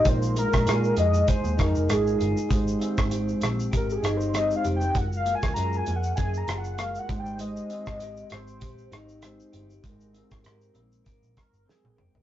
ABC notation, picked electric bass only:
X:1
M:4/4
L:1/16
Q:"Swing 16ths" 1/4=98
K:Ab
V:1 name="Picked electric bass" clef=bass
B,,,3 B,,, B,,2 F,,2 z E,, F,, F,,, A,,,2 G,,, z | A,,,2 z A,,,3 B,,,2 A,,,2 G,,,4 F,,,2 | _G,,,3 D,, _G,,2 F,,2 G,,2 G,,,4 A,,,2- | A,,,2 z A,,,3 A,,,2 B,,,2 A,,,4 G,,,2 |
A,,,3 A,,, A,,2 B,,,2 A,,, B,,, z G,,, z B,,, _G,,, =G,,, |]